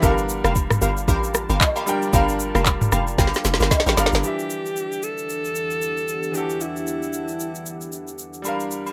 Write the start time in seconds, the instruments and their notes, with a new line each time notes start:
0.02 log drum bass G1, grand piano G3 D4 A4 F5, ambient pad G3 D4 F4 A#4 A5, synth stab G4 A#4 F5, kick, high agogo, shaker
0.10 grand piano A#4
0.18 shaker
0.29 shaker
0.44 log drum bass F1, synth stab G4 A#4 F5, cross-stick, high agogo, shaker
0.56 kick, shaker
0.70 cross-stick, mid tom, shaker
0.81 log drum bass G1, synth stab G4 A#4 F5, high agogo, shaker
0.97 shaker
1.08 log drum bass A1, synth stab G4 A#4 F5, kick, high agogo, shaker
1.24 shaker
1.34 cross-stick, shaker
1.50 log drum bass G1, synth stab G4 A#4 F5, high agogo, shaker
1.60 kick, clap, low woodblock, shaker
1.76 synth stab G4 A#4 F5, high agogo, shaker
1.86 grand piano G3 D4 A#4 G5, shaker
2.02 shaker
2.12 log drum bass G1, grand piano G3 D4 A#4 F5, synth stab G4 A#4 F5, kick, high agogo, shaker
2.29 shaker
2.40 shaker
2.55 log drum bass F1, synth stab G4 A#4 F5, cross-stick, high agogo, shaker
2.66 kick, clap, shaker
2.81 mid tom, shaker
2.92 log drum bass F1, synth stab G4 A#4 F5, cross-stick, high agogo, shaker
3.07 shaker
3.18 log drum bass G1, synth stab G4 A#4 F5, kick, snare, high agogo, shaker
3.27 snare
3.34 snare, shaker
3.45 log drum bass F1, snare, shaker
3.54 snare
3.60 log drum bass G1, synth stab G4 A#4 F5, snare, high agogo, shaker
3.71 kick, snare, low woodblock, shaker
3.80 snare
3.86 log drum bass A1, synth stab G4 A#4 F5, snare, high agogo, shaker
3.96 log drum bass G1, grand piano G3 D4 A#4 F5, snare, shaker
4.06 snare
4.13 log drum bass G1, snare, shaker
4.21 ambient pad E2 E3 D4 G4 F#5, grand piano E3 D4, alto saxophone G4, shaker
4.25 grand piano G4 E5
4.39 shaker
4.50 shaker
4.66 shaker
4.76 shaker
4.92 shaker
5.03 alto saxophone A4, shaker
5.18 shaker
5.29 shaker
5.45 shaker
5.55 shaker
5.70 shaker
5.82 shaker
5.97 shaker
6.08 shaker
6.23 shaker
6.32 grand piano E3 D4, alto saxophone G4, shaker
6.36 grand piano F#4 A4
6.42 grand piano G4
6.50 shaker
6.61 alto saxophone E4, shaker
6.76 shaker
6.87 shaker
7.03 shaker
7.13 shaker
7.28 shaker
7.40 shaker
7.55 shaker
7.66 shaker
7.81 shaker
7.92 shaker
8.08 shaker
8.19 shaker
8.34 shaker
8.42 grand piano G3 D4, high agogo, shaker
8.46 grand piano A#4 F5
8.60 shaker
8.71 shaker
8.87 high agogo, shaker